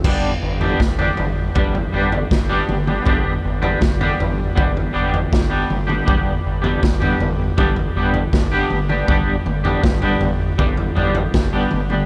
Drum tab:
CC |x---------------|----------------|----------------|----------------|
SD |----o-------o---|----o-------o---|----o-------o---|----o-------o---|
T2 |----o---------oo|----o---------oo|----o---------oo|--o-o---------oo|
FT |o--o-oo-oo-o----|o--o-oo-oo-o----|o--o-oo-oo-o----|o--oooo-oooo----|
BD |o---o---o---o---|o---o---o---o---|o---o---o---o---|o---o---o---o---|